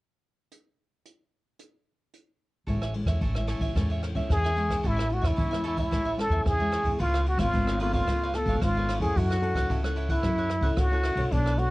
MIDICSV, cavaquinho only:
0, 0, Header, 1, 3, 480
1, 0, Start_track
1, 0, Key_signature, 3, "major"
1, 0, Tempo, 541028
1, 453, Time_signature, 4, 2, 24, 8
1, 10385, End_track
2, 0, Start_track
2, 0, Title_t, "Cavaquinho"
2, 0, Program_c, 0, 24
2, 2365, Note_on_c, 0, 69, 39
2, 2375, Note_on_c, 0, 73, 43
2, 2382, Note_on_c, 0, 76, 44
2, 2386, Note_on_c, 0, 80, 38
2, 2481, Note_off_c, 0, 69, 0
2, 2486, Note_off_c, 0, 73, 0
2, 2487, Note_off_c, 0, 80, 0
2, 2489, Note_off_c, 0, 76, 0
2, 2497, Note_on_c, 0, 80, 51
2, 2506, Note_on_c, 0, 76, 51
2, 2516, Note_on_c, 0, 73, 43
2, 2602, Note_off_c, 0, 73, 0
2, 2606, Note_off_c, 0, 76, 0
2, 2607, Note_off_c, 0, 80, 0
2, 2722, Note_on_c, 0, 80, 50
2, 2728, Note_on_c, 0, 76, 45
2, 2740, Note_on_c, 0, 73, 46
2, 2840, Note_off_c, 0, 80, 0
2, 2843, Note_off_c, 0, 76, 0
2, 2849, Note_off_c, 0, 73, 0
2, 2853, Note_on_c, 0, 69, 39
2, 2860, Note_on_c, 0, 73, 45
2, 2862, Note_on_c, 0, 76, 46
2, 2868, Note_on_c, 0, 80, 45
2, 2965, Note_off_c, 0, 69, 0
2, 2968, Note_off_c, 0, 73, 0
2, 2970, Note_off_c, 0, 76, 0
2, 2973, Note_off_c, 0, 80, 0
2, 2982, Note_on_c, 0, 80, 54
2, 2988, Note_on_c, 0, 76, 44
2, 2995, Note_on_c, 0, 73, 43
2, 3075, Note_off_c, 0, 73, 0
2, 3082, Note_on_c, 0, 69, 62
2, 3084, Note_off_c, 0, 76, 0
2, 3086, Note_on_c, 0, 73, 60
2, 3090, Note_off_c, 0, 80, 0
2, 3095, Note_on_c, 0, 76, 55
2, 3099, Note_on_c, 0, 80, 65
2, 3190, Note_off_c, 0, 80, 0
2, 3200, Note_off_c, 0, 69, 0
2, 3200, Note_off_c, 0, 76, 0
2, 3201, Note_off_c, 0, 73, 0
2, 3201, Note_on_c, 0, 80, 59
2, 3211, Note_on_c, 0, 76, 52
2, 3217, Note_on_c, 0, 73, 49
2, 3319, Note_off_c, 0, 80, 0
2, 3324, Note_off_c, 0, 76, 0
2, 3327, Note_off_c, 0, 73, 0
2, 3330, Note_on_c, 0, 69, 41
2, 3338, Note_on_c, 0, 73, 37
2, 3343, Note_on_c, 0, 76, 42
2, 3346, Note_on_c, 0, 80, 51
2, 3443, Note_off_c, 0, 69, 0
2, 3447, Note_off_c, 0, 80, 0
2, 3448, Note_off_c, 0, 73, 0
2, 3450, Note_off_c, 0, 76, 0
2, 3458, Note_on_c, 0, 80, 57
2, 3469, Note_on_c, 0, 76, 47
2, 3473, Note_on_c, 0, 73, 54
2, 3567, Note_off_c, 0, 73, 0
2, 3567, Note_off_c, 0, 76, 0
2, 3568, Note_off_c, 0, 80, 0
2, 3683, Note_on_c, 0, 80, 53
2, 3693, Note_on_c, 0, 76, 55
2, 3699, Note_on_c, 0, 73, 45
2, 3920, Note_off_c, 0, 80, 0
2, 3925, Note_off_c, 0, 76, 0
2, 3928, Note_off_c, 0, 73, 0
2, 3938, Note_on_c, 0, 80, 56
2, 3947, Note_on_c, 0, 76, 53
2, 3955, Note_on_c, 0, 73, 41
2, 4039, Note_off_c, 0, 73, 0
2, 4044, Note_on_c, 0, 69, 42
2, 4046, Note_off_c, 0, 76, 0
2, 4047, Note_off_c, 0, 80, 0
2, 4049, Note_on_c, 0, 73, 42
2, 4057, Note_on_c, 0, 76, 50
2, 4059, Note_on_c, 0, 80, 49
2, 4275, Note_off_c, 0, 69, 0
2, 4278, Note_off_c, 0, 73, 0
2, 4286, Note_on_c, 0, 69, 44
2, 4287, Note_off_c, 0, 76, 0
2, 4288, Note_off_c, 0, 80, 0
2, 4288, Note_on_c, 0, 73, 43
2, 4296, Note_on_c, 0, 76, 46
2, 4302, Note_on_c, 0, 80, 47
2, 4393, Note_off_c, 0, 80, 0
2, 4401, Note_off_c, 0, 69, 0
2, 4403, Note_off_c, 0, 73, 0
2, 4404, Note_on_c, 0, 80, 51
2, 4405, Note_off_c, 0, 76, 0
2, 4415, Note_on_c, 0, 76, 51
2, 4422, Note_on_c, 0, 73, 49
2, 4510, Note_off_c, 0, 73, 0
2, 4516, Note_off_c, 0, 76, 0
2, 4516, Note_off_c, 0, 80, 0
2, 4626, Note_on_c, 0, 80, 66
2, 4631, Note_on_c, 0, 76, 51
2, 4641, Note_on_c, 0, 73, 48
2, 4751, Note_off_c, 0, 80, 0
2, 4752, Note_off_c, 0, 73, 0
2, 4754, Note_off_c, 0, 76, 0
2, 4758, Note_on_c, 0, 69, 47
2, 4763, Note_on_c, 0, 73, 46
2, 4770, Note_on_c, 0, 76, 48
2, 4775, Note_on_c, 0, 80, 48
2, 4877, Note_off_c, 0, 80, 0
2, 4878, Note_off_c, 0, 69, 0
2, 4880, Note_off_c, 0, 73, 0
2, 4883, Note_off_c, 0, 76, 0
2, 4887, Note_on_c, 0, 80, 62
2, 4898, Note_on_c, 0, 76, 55
2, 4905, Note_on_c, 0, 73, 44
2, 4994, Note_off_c, 0, 73, 0
2, 4998, Note_off_c, 0, 76, 0
2, 5000, Note_on_c, 0, 69, 69
2, 5002, Note_off_c, 0, 80, 0
2, 5005, Note_on_c, 0, 73, 59
2, 5009, Note_on_c, 0, 76, 65
2, 5012, Note_on_c, 0, 80, 68
2, 5106, Note_off_c, 0, 80, 0
2, 5116, Note_on_c, 0, 80, 62
2, 5117, Note_off_c, 0, 76, 0
2, 5118, Note_off_c, 0, 69, 0
2, 5121, Note_off_c, 0, 73, 0
2, 5128, Note_on_c, 0, 76, 59
2, 5134, Note_on_c, 0, 73, 54
2, 5236, Note_off_c, 0, 80, 0
2, 5242, Note_off_c, 0, 76, 0
2, 5245, Note_off_c, 0, 73, 0
2, 5245, Note_on_c, 0, 69, 45
2, 5255, Note_on_c, 0, 73, 43
2, 5256, Note_on_c, 0, 76, 42
2, 5261, Note_on_c, 0, 80, 49
2, 5359, Note_off_c, 0, 80, 0
2, 5360, Note_off_c, 0, 69, 0
2, 5366, Note_off_c, 0, 73, 0
2, 5366, Note_off_c, 0, 76, 0
2, 5370, Note_on_c, 0, 80, 62
2, 5378, Note_on_c, 0, 76, 52
2, 5385, Note_on_c, 0, 73, 48
2, 5479, Note_off_c, 0, 76, 0
2, 5480, Note_off_c, 0, 73, 0
2, 5480, Note_off_c, 0, 80, 0
2, 5603, Note_on_c, 0, 80, 58
2, 5610, Note_on_c, 0, 76, 52
2, 5613, Note_on_c, 0, 73, 52
2, 5839, Note_off_c, 0, 80, 0
2, 5843, Note_off_c, 0, 76, 0
2, 5845, Note_off_c, 0, 73, 0
2, 5855, Note_on_c, 0, 80, 53
2, 5862, Note_on_c, 0, 76, 48
2, 5869, Note_on_c, 0, 73, 46
2, 5952, Note_off_c, 0, 73, 0
2, 5955, Note_off_c, 0, 76, 0
2, 5957, Note_on_c, 0, 69, 50
2, 5962, Note_off_c, 0, 80, 0
2, 5963, Note_on_c, 0, 73, 49
2, 5965, Note_on_c, 0, 76, 52
2, 5973, Note_on_c, 0, 80, 55
2, 6194, Note_off_c, 0, 69, 0
2, 6197, Note_on_c, 0, 65, 44
2, 6199, Note_off_c, 0, 73, 0
2, 6200, Note_off_c, 0, 76, 0
2, 6203, Note_on_c, 0, 71, 42
2, 6204, Note_off_c, 0, 80, 0
2, 6209, Note_on_c, 0, 73, 44
2, 6213, Note_on_c, 0, 77, 54
2, 6316, Note_off_c, 0, 65, 0
2, 6319, Note_off_c, 0, 71, 0
2, 6321, Note_off_c, 0, 77, 0
2, 6322, Note_off_c, 0, 73, 0
2, 6332, Note_on_c, 0, 77, 60
2, 6339, Note_on_c, 0, 73, 58
2, 6349, Note_on_c, 0, 71, 47
2, 6435, Note_off_c, 0, 71, 0
2, 6441, Note_off_c, 0, 73, 0
2, 6444, Note_off_c, 0, 77, 0
2, 6558, Note_on_c, 0, 77, 57
2, 6565, Note_on_c, 0, 73, 62
2, 6574, Note_on_c, 0, 71, 54
2, 6676, Note_off_c, 0, 77, 0
2, 6680, Note_off_c, 0, 73, 0
2, 6685, Note_off_c, 0, 71, 0
2, 6693, Note_on_c, 0, 65, 54
2, 6695, Note_on_c, 0, 71, 44
2, 6702, Note_on_c, 0, 73, 51
2, 6708, Note_on_c, 0, 77, 50
2, 6804, Note_off_c, 0, 65, 0
2, 6805, Note_off_c, 0, 71, 0
2, 6805, Note_off_c, 0, 77, 0
2, 6808, Note_off_c, 0, 73, 0
2, 6815, Note_on_c, 0, 77, 60
2, 6821, Note_on_c, 0, 73, 49
2, 6826, Note_on_c, 0, 71, 46
2, 6918, Note_off_c, 0, 71, 0
2, 6923, Note_on_c, 0, 65, 56
2, 6925, Note_off_c, 0, 73, 0
2, 6925, Note_off_c, 0, 77, 0
2, 6929, Note_on_c, 0, 71, 64
2, 6936, Note_on_c, 0, 73, 63
2, 6942, Note_on_c, 0, 77, 66
2, 7035, Note_off_c, 0, 77, 0
2, 7039, Note_off_c, 0, 65, 0
2, 7041, Note_off_c, 0, 73, 0
2, 7042, Note_off_c, 0, 71, 0
2, 7045, Note_on_c, 0, 77, 67
2, 7051, Note_on_c, 0, 73, 61
2, 7059, Note_on_c, 0, 71, 50
2, 7160, Note_off_c, 0, 77, 0
2, 7163, Note_off_c, 0, 73, 0
2, 7167, Note_off_c, 0, 71, 0
2, 7179, Note_on_c, 0, 65, 45
2, 7187, Note_on_c, 0, 71, 46
2, 7191, Note_on_c, 0, 73, 51
2, 7197, Note_on_c, 0, 77, 46
2, 7286, Note_off_c, 0, 65, 0
2, 7291, Note_off_c, 0, 71, 0
2, 7292, Note_off_c, 0, 73, 0
2, 7296, Note_off_c, 0, 77, 0
2, 7306, Note_on_c, 0, 77, 66
2, 7313, Note_on_c, 0, 73, 61
2, 7317, Note_on_c, 0, 71, 50
2, 7408, Note_off_c, 0, 71, 0
2, 7410, Note_off_c, 0, 77, 0
2, 7413, Note_off_c, 0, 73, 0
2, 7532, Note_on_c, 0, 77, 64
2, 7539, Note_on_c, 0, 73, 56
2, 7544, Note_on_c, 0, 71, 53
2, 7763, Note_off_c, 0, 77, 0
2, 7766, Note_off_c, 0, 73, 0
2, 7768, Note_off_c, 0, 71, 0
2, 7782, Note_on_c, 0, 77, 58
2, 7791, Note_on_c, 0, 73, 49
2, 7797, Note_on_c, 0, 71, 47
2, 7878, Note_off_c, 0, 71, 0
2, 7888, Note_off_c, 0, 73, 0
2, 7888, Note_off_c, 0, 77, 0
2, 7888, Note_on_c, 0, 65, 49
2, 7888, Note_on_c, 0, 71, 52
2, 7899, Note_on_c, 0, 73, 47
2, 7901, Note_on_c, 0, 77, 47
2, 8120, Note_off_c, 0, 65, 0
2, 8121, Note_off_c, 0, 71, 0
2, 8126, Note_off_c, 0, 73, 0
2, 8127, Note_off_c, 0, 77, 0
2, 8137, Note_on_c, 0, 64, 43
2, 8143, Note_on_c, 0, 69, 46
2, 8148, Note_on_c, 0, 73, 43
2, 8151, Note_on_c, 0, 78, 41
2, 8243, Note_off_c, 0, 78, 0
2, 8245, Note_off_c, 0, 64, 0
2, 8248, Note_off_c, 0, 69, 0
2, 8251, Note_off_c, 0, 73, 0
2, 8253, Note_on_c, 0, 78, 54
2, 8264, Note_on_c, 0, 73, 60
2, 8270, Note_on_c, 0, 69, 51
2, 8355, Note_off_c, 0, 69, 0
2, 8361, Note_off_c, 0, 73, 0
2, 8363, Note_off_c, 0, 78, 0
2, 8477, Note_on_c, 0, 78, 64
2, 8488, Note_on_c, 0, 73, 56
2, 8491, Note_on_c, 0, 69, 57
2, 8595, Note_off_c, 0, 78, 0
2, 8598, Note_off_c, 0, 69, 0
2, 8600, Note_off_c, 0, 73, 0
2, 8602, Note_on_c, 0, 64, 49
2, 8609, Note_on_c, 0, 69, 51
2, 8611, Note_on_c, 0, 73, 50
2, 8619, Note_on_c, 0, 78, 51
2, 8717, Note_off_c, 0, 64, 0
2, 8719, Note_off_c, 0, 78, 0
2, 8720, Note_off_c, 0, 69, 0
2, 8722, Note_off_c, 0, 73, 0
2, 8730, Note_on_c, 0, 78, 57
2, 8735, Note_on_c, 0, 73, 59
2, 8742, Note_on_c, 0, 69, 50
2, 8831, Note_off_c, 0, 69, 0
2, 8837, Note_off_c, 0, 73, 0
2, 8837, Note_on_c, 0, 64, 63
2, 8841, Note_off_c, 0, 78, 0
2, 8841, Note_on_c, 0, 69, 57
2, 8847, Note_on_c, 0, 73, 60
2, 8852, Note_on_c, 0, 78, 65
2, 8948, Note_off_c, 0, 78, 0
2, 8954, Note_off_c, 0, 64, 0
2, 8957, Note_off_c, 0, 69, 0
2, 8959, Note_on_c, 0, 78, 68
2, 8960, Note_off_c, 0, 73, 0
2, 8971, Note_on_c, 0, 73, 66
2, 8976, Note_on_c, 0, 69, 54
2, 9075, Note_off_c, 0, 78, 0
2, 9079, Note_off_c, 0, 69, 0
2, 9081, Note_off_c, 0, 73, 0
2, 9083, Note_on_c, 0, 64, 43
2, 9089, Note_on_c, 0, 69, 47
2, 9096, Note_on_c, 0, 73, 52
2, 9103, Note_on_c, 0, 78, 48
2, 9197, Note_off_c, 0, 64, 0
2, 9199, Note_off_c, 0, 78, 0
2, 9201, Note_off_c, 0, 69, 0
2, 9204, Note_off_c, 0, 73, 0
2, 9209, Note_on_c, 0, 78, 59
2, 9216, Note_on_c, 0, 73, 59
2, 9227, Note_on_c, 0, 69, 49
2, 9312, Note_off_c, 0, 69, 0
2, 9315, Note_off_c, 0, 78, 0
2, 9316, Note_off_c, 0, 73, 0
2, 9426, Note_on_c, 0, 78, 60
2, 9438, Note_on_c, 0, 73, 57
2, 9447, Note_on_c, 0, 69, 50
2, 9668, Note_off_c, 0, 78, 0
2, 9674, Note_off_c, 0, 73, 0
2, 9679, Note_off_c, 0, 69, 0
2, 9690, Note_on_c, 0, 78, 57
2, 9697, Note_on_c, 0, 73, 57
2, 9708, Note_on_c, 0, 69, 46
2, 9789, Note_off_c, 0, 69, 0
2, 9794, Note_on_c, 0, 64, 49
2, 9798, Note_off_c, 0, 73, 0
2, 9800, Note_off_c, 0, 78, 0
2, 9800, Note_on_c, 0, 69, 45
2, 9808, Note_on_c, 0, 73, 46
2, 9811, Note_on_c, 0, 78, 54
2, 10032, Note_off_c, 0, 64, 0
2, 10035, Note_off_c, 0, 69, 0
2, 10039, Note_off_c, 0, 73, 0
2, 10040, Note_off_c, 0, 78, 0
2, 10048, Note_on_c, 0, 62, 44
2, 10053, Note_on_c, 0, 69, 41
2, 10054, Note_on_c, 0, 71, 51
2, 10060, Note_on_c, 0, 74, 47
2, 10153, Note_off_c, 0, 74, 0
2, 10159, Note_off_c, 0, 62, 0
2, 10161, Note_off_c, 0, 69, 0
2, 10162, Note_off_c, 0, 71, 0
2, 10164, Note_on_c, 0, 74, 59
2, 10176, Note_on_c, 0, 71, 61
2, 10179, Note_on_c, 0, 69, 53
2, 10269, Note_off_c, 0, 69, 0
2, 10271, Note_off_c, 0, 71, 0
2, 10271, Note_off_c, 0, 74, 0
2, 10385, End_track
3, 0, Start_track
3, 0, Title_t, "Muted cavaquinho strokes"
3, 2609, Note_on_c, 9, 29, 33
3, 2698, Note_off_c, 9, 29, 0
3, 3573, Note_on_c, 9, 29, 30
3, 3662, Note_off_c, 9, 29, 0
3, 4521, Note_on_c, 9, 29, 36
3, 4610, Note_off_c, 9, 29, 0
3, 5486, Note_on_c, 9, 29, 33
3, 5575, Note_off_c, 9, 29, 0
3, 6445, Note_on_c, 9, 29, 35
3, 6534, Note_off_c, 9, 29, 0
3, 7417, Note_on_c, 9, 29, 32
3, 7505, Note_off_c, 9, 29, 0
3, 8364, Note_on_c, 9, 29, 37
3, 8453, Note_off_c, 9, 29, 0
3, 9317, Note_on_c, 9, 29, 29
3, 9406, Note_off_c, 9, 29, 0
3, 10277, Note_on_c, 9, 29, 36
3, 10366, Note_off_c, 9, 29, 0
3, 10385, End_track
0, 0, End_of_file